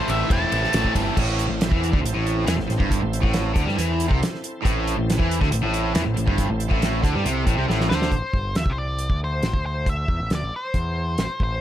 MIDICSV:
0, 0, Header, 1, 9, 480
1, 0, Start_track
1, 0, Key_signature, 0, "minor"
1, 0, Tempo, 435414
1, 1286, Time_signature, 4, 2, 24, 8
1, 12798, End_track
2, 0, Start_track
2, 0, Title_t, "Lead electric guitar"
2, 0, Program_c, 0, 29
2, 104, Note_on_c, 0, 76, 91
2, 319, Note_off_c, 0, 76, 0
2, 356, Note_on_c, 0, 81, 103
2, 1016, Note_off_c, 0, 81, 0
2, 8703, Note_on_c, 0, 72, 92
2, 9439, Note_on_c, 0, 76, 91
2, 9451, Note_off_c, 0, 72, 0
2, 9589, Note_on_c, 0, 72, 71
2, 9604, Note_off_c, 0, 76, 0
2, 9670, Note_off_c, 0, 72, 0
2, 9683, Note_on_c, 0, 74, 81
2, 10127, Note_off_c, 0, 74, 0
2, 10187, Note_on_c, 0, 72, 79
2, 10637, Note_off_c, 0, 72, 0
2, 10651, Note_on_c, 0, 72, 80
2, 10893, Note_off_c, 0, 72, 0
2, 10909, Note_on_c, 0, 76, 89
2, 11345, Note_off_c, 0, 76, 0
2, 11407, Note_on_c, 0, 74, 84
2, 11611, Note_off_c, 0, 74, 0
2, 11643, Note_on_c, 0, 72, 75
2, 12591, Note_off_c, 0, 72, 0
2, 12604, Note_on_c, 0, 72, 80
2, 12798, Note_off_c, 0, 72, 0
2, 12798, End_track
3, 0, Start_track
3, 0, Title_t, "Tonewheel organ"
3, 0, Program_c, 1, 16
3, 0, Note_on_c, 1, 60, 71
3, 0, Note_on_c, 1, 64, 78
3, 0, Note_on_c, 1, 69, 75
3, 0, Note_on_c, 1, 72, 71
3, 1258, Note_off_c, 1, 60, 0
3, 1259, Note_off_c, 1, 64, 0
3, 1261, Note_off_c, 1, 69, 0
3, 1262, Note_off_c, 1, 72, 0
3, 1306, Note_on_c, 1, 69, 74
3, 1307, Note_on_c, 1, 60, 69
3, 1309, Note_on_c, 1, 64, 76
3, 1309, Note_on_c, 1, 72, 70
3, 5089, Note_off_c, 1, 69, 0
3, 5090, Note_off_c, 1, 60, 0
3, 5091, Note_off_c, 1, 64, 0
3, 5091, Note_off_c, 1, 72, 0
3, 5121, Note_on_c, 1, 64, 70
3, 5125, Note_on_c, 1, 72, 73
3, 5127, Note_on_c, 1, 60, 73
3, 5134, Note_on_c, 1, 69, 75
3, 8916, Note_off_c, 1, 64, 0
3, 8917, Note_off_c, 1, 72, 0
3, 8919, Note_off_c, 1, 60, 0
3, 8922, Note_off_c, 1, 69, 0
3, 12798, End_track
4, 0, Start_track
4, 0, Title_t, "Overdriven electric guitar"
4, 0, Program_c, 2, 29
4, 0, Note_on_c, 2, 45, 92
4, 0, Note_on_c, 2, 52, 92
4, 0, Note_on_c, 2, 60, 100
4, 0, Note_on_c, 2, 64, 106
4, 0, Note_on_c, 2, 69, 108
4, 288, Note_off_c, 2, 45, 0
4, 296, Note_off_c, 2, 52, 0
4, 301, Note_on_c, 2, 45, 72
4, 307, Note_off_c, 2, 60, 0
4, 309, Note_on_c, 2, 52, 83
4, 310, Note_off_c, 2, 64, 0
4, 314, Note_off_c, 2, 69, 0
4, 320, Note_on_c, 2, 60, 77
4, 324, Note_on_c, 2, 64, 81
4, 330, Note_on_c, 2, 69, 78
4, 1258, Note_off_c, 2, 45, 0
4, 1262, Note_off_c, 2, 52, 0
4, 1268, Note_off_c, 2, 60, 0
4, 1270, Note_off_c, 2, 64, 0
4, 1273, Note_off_c, 2, 69, 0
4, 12798, End_track
5, 0, Start_track
5, 0, Title_t, "Overdriven electric guitar"
5, 0, Program_c, 3, 29
5, 105, Note_on_c, 3, 45, 83
5, 110, Note_on_c, 3, 52, 81
5, 112, Note_on_c, 3, 57, 96
5, 337, Note_off_c, 3, 45, 0
5, 339, Note_off_c, 3, 52, 0
5, 348, Note_off_c, 3, 57, 0
5, 350, Note_on_c, 3, 45, 100
5, 353, Note_on_c, 3, 52, 91
5, 361, Note_on_c, 3, 57, 107
5, 575, Note_off_c, 3, 45, 0
5, 578, Note_off_c, 3, 52, 0
5, 587, Note_off_c, 3, 57, 0
5, 588, Note_on_c, 3, 45, 80
5, 591, Note_on_c, 3, 52, 90
5, 601, Note_on_c, 3, 57, 93
5, 807, Note_off_c, 3, 45, 0
5, 819, Note_off_c, 3, 52, 0
5, 821, Note_on_c, 3, 45, 95
5, 822, Note_off_c, 3, 57, 0
5, 835, Note_on_c, 3, 57, 106
5, 1044, Note_off_c, 3, 45, 0
5, 1057, Note_on_c, 3, 45, 84
5, 1058, Note_off_c, 3, 57, 0
5, 1060, Note_on_c, 3, 52, 92
5, 1071, Note_on_c, 3, 57, 91
5, 1277, Note_off_c, 3, 45, 0
5, 1278, Note_off_c, 3, 52, 0
5, 1284, Note_off_c, 3, 57, 0
5, 12798, End_track
6, 0, Start_track
6, 0, Title_t, "Overdriven electric guitar"
6, 0, Program_c, 4, 29
6, 0, Note_on_c, 4, 45, 100
6, 0, Note_on_c, 4, 52, 89
6, 81, Note_on_c, 4, 69, 67
6, 99, Note_on_c, 4, 64, 62
6, 114, Note_on_c, 4, 60, 59
6, 326, Note_off_c, 4, 45, 0
6, 330, Note_off_c, 4, 52, 0
6, 555, Note_off_c, 4, 69, 0
6, 568, Note_on_c, 4, 69, 69
6, 574, Note_off_c, 4, 64, 0
6, 587, Note_on_c, 4, 64, 67
6, 592, Note_off_c, 4, 60, 0
6, 605, Note_on_c, 4, 60, 56
6, 801, Note_on_c, 4, 52, 75
6, 803, Note_off_c, 4, 60, 0
6, 816, Note_off_c, 4, 64, 0
6, 816, Note_on_c, 4, 60, 78
6, 824, Note_off_c, 4, 69, 0
6, 829, Note_on_c, 4, 64, 80
6, 837, Note_on_c, 4, 69, 83
6, 1269, Note_off_c, 4, 52, 0
6, 1276, Note_off_c, 4, 60, 0
6, 1281, Note_on_c, 4, 45, 104
6, 1283, Note_off_c, 4, 64, 0
6, 1287, Note_off_c, 4, 69, 0
6, 1633, Note_off_c, 4, 45, 0
6, 1646, Note_on_c, 4, 45, 64
6, 1837, Note_off_c, 4, 45, 0
6, 1891, Note_on_c, 4, 52, 98
6, 2120, Note_off_c, 4, 52, 0
6, 2135, Note_on_c, 4, 50, 100
6, 2242, Note_off_c, 4, 50, 0
6, 2247, Note_on_c, 4, 45, 71
6, 2357, Note_off_c, 4, 45, 0
6, 2370, Note_on_c, 4, 45, 101
6, 2715, Note_off_c, 4, 45, 0
6, 2719, Note_on_c, 4, 52, 103
6, 2832, Note_off_c, 4, 52, 0
6, 2836, Note_on_c, 4, 45, 70
6, 2947, Note_off_c, 4, 45, 0
6, 2960, Note_on_c, 4, 45, 71
6, 3074, Note_on_c, 4, 43, 96
6, 3081, Note_off_c, 4, 45, 0
6, 3311, Note_off_c, 4, 43, 0
6, 3319, Note_on_c, 4, 45, 72
6, 3512, Note_off_c, 4, 45, 0
6, 3554, Note_on_c, 4, 45, 96
6, 3899, Note_off_c, 4, 45, 0
6, 3904, Note_on_c, 4, 50, 98
6, 4025, Note_off_c, 4, 50, 0
6, 4028, Note_on_c, 4, 55, 100
6, 4135, Note_on_c, 4, 52, 107
6, 4147, Note_off_c, 4, 55, 0
6, 4499, Note_off_c, 4, 52, 0
6, 4505, Note_on_c, 4, 48, 105
6, 4625, Note_off_c, 4, 48, 0
6, 5105, Note_on_c, 4, 45, 105
6, 5463, Note_off_c, 4, 45, 0
6, 5488, Note_on_c, 4, 45, 76
6, 5674, Note_off_c, 4, 45, 0
6, 5717, Note_on_c, 4, 52, 101
6, 5948, Note_off_c, 4, 52, 0
6, 5957, Note_on_c, 4, 50, 106
6, 6068, Note_off_c, 4, 50, 0
6, 6078, Note_on_c, 4, 45, 73
6, 6185, Note_off_c, 4, 45, 0
6, 6198, Note_on_c, 4, 45, 110
6, 6548, Note_off_c, 4, 45, 0
6, 6556, Note_on_c, 4, 52, 99
6, 6667, Note_off_c, 4, 52, 0
6, 6687, Note_on_c, 4, 45, 74
6, 6787, Note_off_c, 4, 45, 0
6, 6800, Note_on_c, 4, 45, 66
6, 6916, Note_off_c, 4, 45, 0
6, 6920, Note_on_c, 4, 43, 95
6, 7149, Note_off_c, 4, 43, 0
6, 7161, Note_on_c, 4, 45, 77
6, 7348, Note_off_c, 4, 45, 0
6, 7391, Note_on_c, 4, 45, 99
6, 7743, Note_off_c, 4, 45, 0
6, 7755, Note_on_c, 4, 50, 100
6, 7866, Note_off_c, 4, 50, 0
6, 7883, Note_on_c, 4, 55, 102
6, 7990, Note_off_c, 4, 55, 0
6, 7999, Note_on_c, 4, 48, 99
6, 8228, Note_off_c, 4, 48, 0
6, 8248, Note_on_c, 4, 45, 93
6, 8352, Note_off_c, 4, 45, 0
6, 8358, Note_on_c, 4, 48, 99
6, 8465, Note_off_c, 4, 48, 0
6, 8469, Note_on_c, 4, 45, 109
6, 8703, Note_off_c, 4, 45, 0
6, 8711, Note_on_c, 4, 50, 96
6, 8945, Note_off_c, 4, 50, 0
6, 12798, End_track
7, 0, Start_track
7, 0, Title_t, "Picked electric bass"
7, 0, Program_c, 5, 34
7, 91, Note_on_c, 5, 33, 92
7, 240, Note_off_c, 5, 33, 0
7, 336, Note_on_c, 5, 28, 89
7, 484, Note_off_c, 5, 28, 0
7, 576, Note_on_c, 5, 33, 87
7, 724, Note_off_c, 5, 33, 0
7, 814, Note_on_c, 5, 33, 87
7, 962, Note_off_c, 5, 33, 0
7, 1052, Note_on_c, 5, 31, 83
7, 1201, Note_off_c, 5, 31, 0
7, 1293, Note_on_c, 5, 33, 86
7, 1624, Note_off_c, 5, 33, 0
7, 1645, Note_on_c, 5, 33, 83
7, 1868, Note_off_c, 5, 33, 0
7, 1893, Note_on_c, 5, 40, 89
7, 2112, Note_off_c, 5, 40, 0
7, 2136, Note_on_c, 5, 38, 94
7, 2242, Note_off_c, 5, 38, 0
7, 2252, Note_on_c, 5, 33, 79
7, 2360, Note_off_c, 5, 33, 0
7, 2376, Note_on_c, 5, 33, 96
7, 2705, Note_off_c, 5, 33, 0
7, 2733, Note_on_c, 5, 40, 93
7, 2837, Note_off_c, 5, 40, 0
7, 2844, Note_on_c, 5, 33, 73
7, 2955, Note_off_c, 5, 33, 0
7, 2971, Note_on_c, 5, 33, 80
7, 3079, Note_off_c, 5, 33, 0
7, 3089, Note_on_c, 5, 31, 93
7, 3309, Note_off_c, 5, 31, 0
7, 3326, Note_on_c, 5, 33, 80
7, 3547, Note_off_c, 5, 33, 0
7, 3566, Note_on_c, 5, 33, 97
7, 3898, Note_off_c, 5, 33, 0
7, 3920, Note_on_c, 5, 38, 98
7, 4032, Note_off_c, 5, 38, 0
7, 4046, Note_on_c, 5, 43, 97
7, 4155, Note_off_c, 5, 43, 0
7, 4171, Note_on_c, 5, 40, 97
7, 4500, Note_off_c, 5, 40, 0
7, 4533, Note_on_c, 5, 36, 90
7, 4638, Note_off_c, 5, 36, 0
7, 5129, Note_on_c, 5, 33, 94
7, 5457, Note_off_c, 5, 33, 0
7, 5488, Note_on_c, 5, 33, 87
7, 5705, Note_off_c, 5, 33, 0
7, 5732, Note_on_c, 5, 40, 95
7, 5947, Note_off_c, 5, 40, 0
7, 5972, Note_on_c, 5, 38, 97
7, 6076, Note_off_c, 5, 38, 0
7, 6090, Note_on_c, 5, 33, 78
7, 6194, Note_off_c, 5, 33, 0
7, 6202, Note_on_c, 5, 33, 95
7, 6532, Note_off_c, 5, 33, 0
7, 6567, Note_on_c, 5, 40, 91
7, 6672, Note_off_c, 5, 40, 0
7, 6677, Note_on_c, 5, 33, 78
7, 6787, Note_off_c, 5, 33, 0
7, 6809, Note_on_c, 5, 33, 79
7, 6913, Note_off_c, 5, 33, 0
7, 6921, Note_on_c, 5, 31, 93
7, 7140, Note_off_c, 5, 31, 0
7, 7160, Note_on_c, 5, 33, 76
7, 7379, Note_off_c, 5, 33, 0
7, 7397, Note_on_c, 5, 33, 98
7, 7729, Note_off_c, 5, 33, 0
7, 7758, Note_on_c, 5, 38, 100
7, 7866, Note_off_c, 5, 38, 0
7, 7885, Note_on_c, 5, 43, 99
7, 7985, Note_off_c, 5, 43, 0
7, 7992, Note_on_c, 5, 36, 92
7, 8215, Note_off_c, 5, 36, 0
7, 8234, Note_on_c, 5, 33, 85
7, 8344, Note_off_c, 5, 33, 0
7, 8352, Note_on_c, 5, 36, 87
7, 8463, Note_off_c, 5, 36, 0
7, 8469, Note_on_c, 5, 33, 87
7, 8693, Note_off_c, 5, 33, 0
7, 8716, Note_on_c, 5, 38, 89
7, 8938, Note_off_c, 5, 38, 0
7, 8950, Note_on_c, 5, 33, 81
7, 9063, Note_off_c, 5, 33, 0
7, 9189, Note_on_c, 5, 31, 80
7, 9415, Note_off_c, 5, 31, 0
7, 9431, Note_on_c, 5, 39, 78
7, 9536, Note_off_c, 5, 39, 0
7, 9542, Note_on_c, 5, 36, 81
7, 9996, Note_off_c, 5, 36, 0
7, 10029, Note_on_c, 5, 38, 80
7, 10369, Note_off_c, 5, 38, 0
7, 10393, Note_on_c, 5, 33, 83
7, 10508, Note_off_c, 5, 33, 0
7, 10519, Note_on_c, 5, 38, 74
7, 11080, Note_off_c, 5, 38, 0
7, 11116, Note_on_c, 5, 40, 84
7, 11231, Note_off_c, 5, 40, 0
7, 11243, Note_on_c, 5, 33, 74
7, 11355, Note_off_c, 5, 33, 0
7, 11365, Note_on_c, 5, 38, 81
7, 11477, Note_off_c, 5, 38, 0
7, 11491, Note_on_c, 5, 33, 69
7, 11600, Note_off_c, 5, 33, 0
7, 11848, Note_on_c, 5, 40, 78
7, 12296, Note_off_c, 5, 40, 0
7, 12326, Note_on_c, 5, 33, 69
7, 12440, Note_off_c, 5, 33, 0
7, 12571, Note_on_c, 5, 33, 82
7, 12795, Note_off_c, 5, 33, 0
7, 12798, End_track
8, 0, Start_track
8, 0, Title_t, "Muted picked electric bass strokes"
8, 9083, Note_on_c, 9, 29, 34
8, 9193, Note_off_c, 9, 29, 0
8, 11606, Note_on_c, 9, 29, 35
8, 11716, Note_off_c, 9, 29, 0
8, 12450, Note_on_c, 9, 29, 36
8, 12561, Note_off_c, 9, 29, 0
8, 12798, End_track
9, 0, Start_track
9, 0, Title_t, "Drums"
9, 86, Note_on_c, 9, 54, 82
9, 105, Note_on_c, 9, 51, 71
9, 196, Note_off_c, 9, 54, 0
9, 215, Note_off_c, 9, 51, 0
9, 334, Note_on_c, 9, 36, 114
9, 336, Note_on_c, 9, 54, 29
9, 339, Note_on_c, 9, 51, 92
9, 444, Note_off_c, 9, 36, 0
9, 446, Note_off_c, 9, 54, 0
9, 450, Note_off_c, 9, 51, 0
9, 570, Note_on_c, 9, 54, 28
9, 575, Note_on_c, 9, 51, 67
9, 680, Note_off_c, 9, 54, 0
9, 685, Note_off_c, 9, 51, 0
9, 707, Note_on_c, 9, 38, 30
9, 803, Note_on_c, 9, 54, 107
9, 812, Note_on_c, 9, 51, 93
9, 817, Note_off_c, 9, 38, 0
9, 820, Note_on_c, 9, 38, 113
9, 914, Note_off_c, 9, 54, 0
9, 922, Note_off_c, 9, 51, 0
9, 931, Note_off_c, 9, 38, 0
9, 932, Note_on_c, 9, 36, 73
9, 1042, Note_off_c, 9, 36, 0
9, 1051, Note_on_c, 9, 36, 80
9, 1051, Note_on_c, 9, 54, 75
9, 1055, Note_on_c, 9, 51, 70
9, 1161, Note_off_c, 9, 36, 0
9, 1161, Note_off_c, 9, 54, 0
9, 1166, Note_off_c, 9, 51, 0
9, 1290, Note_on_c, 9, 36, 102
9, 1291, Note_on_c, 9, 49, 108
9, 1400, Note_off_c, 9, 36, 0
9, 1402, Note_off_c, 9, 49, 0
9, 1533, Note_on_c, 9, 42, 73
9, 1643, Note_off_c, 9, 42, 0
9, 1774, Note_on_c, 9, 42, 91
9, 1783, Note_on_c, 9, 38, 104
9, 1885, Note_off_c, 9, 42, 0
9, 1891, Note_on_c, 9, 36, 107
9, 1893, Note_off_c, 9, 38, 0
9, 2002, Note_off_c, 9, 36, 0
9, 2023, Note_on_c, 9, 42, 73
9, 2132, Note_on_c, 9, 36, 110
9, 2133, Note_off_c, 9, 42, 0
9, 2242, Note_off_c, 9, 36, 0
9, 2266, Note_on_c, 9, 42, 97
9, 2376, Note_off_c, 9, 42, 0
9, 2498, Note_on_c, 9, 42, 70
9, 2608, Note_off_c, 9, 42, 0
9, 2729, Note_on_c, 9, 42, 97
9, 2738, Note_on_c, 9, 38, 105
9, 2839, Note_off_c, 9, 42, 0
9, 2848, Note_off_c, 9, 38, 0
9, 2862, Note_on_c, 9, 38, 34
9, 2972, Note_off_c, 9, 38, 0
9, 2975, Note_on_c, 9, 42, 61
9, 2984, Note_on_c, 9, 38, 29
9, 3085, Note_off_c, 9, 42, 0
9, 3088, Note_on_c, 9, 36, 99
9, 3094, Note_off_c, 9, 38, 0
9, 3198, Note_off_c, 9, 36, 0
9, 3207, Note_on_c, 9, 36, 90
9, 3215, Note_on_c, 9, 42, 86
9, 3317, Note_off_c, 9, 36, 0
9, 3325, Note_off_c, 9, 42, 0
9, 3454, Note_on_c, 9, 42, 70
9, 3564, Note_off_c, 9, 42, 0
9, 3564, Note_on_c, 9, 36, 98
9, 3674, Note_off_c, 9, 36, 0
9, 3677, Note_on_c, 9, 42, 84
9, 3686, Note_on_c, 9, 38, 100
9, 3787, Note_off_c, 9, 42, 0
9, 3796, Note_off_c, 9, 38, 0
9, 3922, Note_on_c, 9, 42, 69
9, 3923, Note_on_c, 9, 36, 114
9, 4032, Note_off_c, 9, 42, 0
9, 4033, Note_off_c, 9, 36, 0
9, 4059, Note_on_c, 9, 38, 33
9, 4169, Note_off_c, 9, 38, 0
9, 4173, Note_on_c, 9, 42, 89
9, 4284, Note_off_c, 9, 42, 0
9, 4409, Note_on_c, 9, 42, 67
9, 4519, Note_off_c, 9, 42, 0
9, 4528, Note_on_c, 9, 36, 98
9, 4638, Note_off_c, 9, 36, 0
9, 4659, Note_on_c, 9, 42, 89
9, 4668, Note_on_c, 9, 38, 106
9, 4769, Note_off_c, 9, 42, 0
9, 4778, Note_off_c, 9, 38, 0
9, 4790, Note_on_c, 9, 38, 34
9, 4892, Note_on_c, 9, 42, 68
9, 4901, Note_off_c, 9, 38, 0
9, 5003, Note_off_c, 9, 42, 0
9, 5128, Note_on_c, 9, 36, 109
9, 5131, Note_on_c, 9, 42, 92
9, 5238, Note_off_c, 9, 36, 0
9, 5241, Note_off_c, 9, 42, 0
9, 5374, Note_on_c, 9, 42, 80
9, 5484, Note_off_c, 9, 42, 0
9, 5619, Note_on_c, 9, 42, 99
9, 5627, Note_on_c, 9, 38, 97
9, 5729, Note_off_c, 9, 42, 0
9, 5729, Note_on_c, 9, 36, 100
9, 5738, Note_off_c, 9, 38, 0
9, 5839, Note_off_c, 9, 36, 0
9, 5858, Note_on_c, 9, 42, 77
9, 5968, Note_off_c, 9, 42, 0
9, 5968, Note_on_c, 9, 36, 108
9, 5980, Note_on_c, 9, 38, 34
9, 6078, Note_off_c, 9, 36, 0
9, 6086, Note_on_c, 9, 42, 100
9, 6090, Note_off_c, 9, 38, 0
9, 6196, Note_off_c, 9, 42, 0
9, 6325, Note_on_c, 9, 42, 71
9, 6435, Note_off_c, 9, 42, 0
9, 6558, Note_on_c, 9, 42, 97
9, 6567, Note_on_c, 9, 38, 112
9, 6669, Note_off_c, 9, 42, 0
9, 6677, Note_off_c, 9, 38, 0
9, 6802, Note_on_c, 9, 42, 68
9, 6913, Note_off_c, 9, 42, 0
9, 6918, Note_on_c, 9, 36, 106
9, 7029, Note_off_c, 9, 36, 0
9, 7034, Note_on_c, 9, 42, 96
9, 7039, Note_on_c, 9, 36, 100
9, 7144, Note_off_c, 9, 42, 0
9, 7149, Note_off_c, 9, 36, 0
9, 7277, Note_on_c, 9, 42, 69
9, 7387, Note_off_c, 9, 42, 0
9, 7397, Note_on_c, 9, 36, 103
9, 7507, Note_off_c, 9, 36, 0
9, 7521, Note_on_c, 9, 42, 87
9, 7530, Note_on_c, 9, 38, 99
9, 7631, Note_off_c, 9, 42, 0
9, 7640, Note_off_c, 9, 38, 0
9, 7756, Note_on_c, 9, 36, 100
9, 7762, Note_on_c, 9, 42, 71
9, 7867, Note_off_c, 9, 36, 0
9, 7873, Note_off_c, 9, 42, 0
9, 8000, Note_on_c, 9, 42, 96
9, 8110, Note_off_c, 9, 42, 0
9, 8233, Note_on_c, 9, 36, 99
9, 8234, Note_on_c, 9, 42, 69
9, 8343, Note_off_c, 9, 36, 0
9, 8344, Note_off_c, 9, 42, 0
9, 8488, Note_on_c, 9, 38, 64
9, 8599, Note_off_c, 9, 38, 0
9, 8605, Note_on_c, 9, 38, 65
9, 8715, Note_off_c, 9, 38, 0
9, 8723, Note_on_c, 9, 38, 81
9, 8834, Note_off_c, 9, 38, 0
9, 8841, Note_on_c, 9, 38, 88
9, 8946, Note_on_c, 9, 36, 90
9, 8948, Note_on_c, 9, 42, 56
9, 8951, Note_off_c, 9, 38, 0
9, 9056, Note_off_c, 9, 36, 0
9, 9058, Note_off_c, 9, 42, 0
9, 9189, Note_on_c, 9, 36, 97
9, 9299, Note_off_c, 9, 36, 0
9, 9430, Note_on_c, 9, 42, 54
9, 9438, Note_on_c, 9, 38, 94
9, 9540, Note_off_c, 9, 42, 0
9, 9544, Note_on_c, 9, 36, 86
9, 9549, Note_off_c, 9, 38, 0
9, 9654, Note_off_c, 9, 36, 0
9, 9905, Note_on_c, 9, 42, 55
9, 10016, Note_off_c, 9, 42, 0
9, 10028, Note_on_c, 9, 36, 90
9, 10138, Note_off_c, 9, 36, 0
9, 10391, Note_on_c, 9, 42, 53
9, 10399, Note_on_c, 9, 38, 91
9, 10501, Note_off_c, 9, 42, 0
9, 10510, Note_off_c, 9, 38, 0
9, 10511, Note_on_c, 9, 36, 94
9, 10622, Note_off_c, 9, 36, 0
9, 10874, Note_on_c, 9, 36, 93
9, 10876, Note_on_c, 9, 42, 53
9, 10985, Note_off_c, 9, 36, 0
9, 10987, Note_off_c, 9, 42, 0
9, 11116, Note_on_c, 9, 36, 93
9, 11226, Note_off_c, 9, 36, 0
9, 11358, Note_on_c, 9, 42, 49
9, 11367, Note_on_c, 9, 38, 90
9, 11468, Note_off_c, 9, 42, 0
9, 11477, Note_off_c, 9, 38, 0
9, 11840, Note_on_c, 9, 42, 51
9, 11841, Note_on_c, 9, 36, 89
9, 11950, Note_off_c, 9, 42, 0
9, 11951, Note_off_c, 9, 36, 0
9, 12323, Note_on_c, 9, 42, 54
9, 12332, Note_on_c, 9, 38, 95
9, 12433, Note_off_c, 9, 42, 0
9, 12442, Note_off_c, 9, 38, 0
9, 12568, Note_on_c, 9, 36, 84
9, 12678, Note_off_c, 9, 36, 0
9, 12798, End_track
0, 0, End_of_file